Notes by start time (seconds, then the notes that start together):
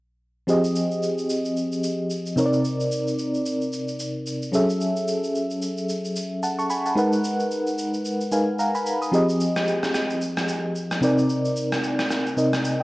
0.47 F3 C4 G4 G#4 D#5, shaker
0.64 shaker
0.75 shaker
0.91 shaker
1.03 shaker
1.18 shaker
1.29 shaker
1.45 shaker
1.56 shaker
1.72 shaker
1.83 shaker
2.10 shaker
2.26 shaker
2.36 C3 C4 D#4 A#4 C#5, shaker
2.46 D5
2.53 shaker
2.64 shaker
2.80 shaker
2.92 shaker
3.07 shaker
3.19 shaker
3.34 shaker
3.45 shaker
3.61 shaker
3.72 shaker
3.88 shaker
3.99 shaker
4.26 shaker
4.42 shaker
4.52 F#3 C#4 G#4 A4 E5, shaker
4.69 shaker
4.81 shaker
4.96 shaker
5.08 shaker
5.23 shaker
5.35 shaker
5.50 shaker
5.62 shaker
5.78 shaker
5.89 shaker
6.05 shaker
6.16 shaker
6.43 F#5 A5, shaker
6.59 A5 C#6, shaker
6.70 G#5 B5, shaker
6.86 F#5 A5, shaker
6.95 G#3 D#4 A#4 B4 F#5, shaker
7.13 shaker
7.24 shaker
7.40 shaker
7.51 shaker
7.67 shaker
7.78 shaker
7.94 shaker
8.05 shaker
8.21 shaker
8.31 G#3 D#4 A#4 B4 F5 G#5, shaker
8.59 F5 F#5 A#5, shaker
8.75 G#5 B5, shaker
8.86 shaker
9.02 B5 D#6, shaker
9.12 F3 C4 G4 G#4 D#5, shaker
9.29 shaker
9.40 shaker
9.56 cross-stick, shaker
9.67 shaker
9.83 cross-stick, shaker
9.94 cross-stick, shaker
10.10 shaker
10.21 shaker
10.37 cross-stick, shaker
10.48 shaker
10.75 shaker
10.91 cross-stick, shaker
11.01 C3 C4 D#4 A#4 D5, shaker
11.18 shaker
11.29 shaker
11.45 shaker
11.56 shaker
11.72 cross-stick, shaker
11.83 shaker
11.99 cross-stick, shaker
12.10 cross-stick, shaker
12.26 shaker
12.37 C3 C4 D#4 A#4 D#5, shaker
12.53 cross-stick, shaker
12.64 shaker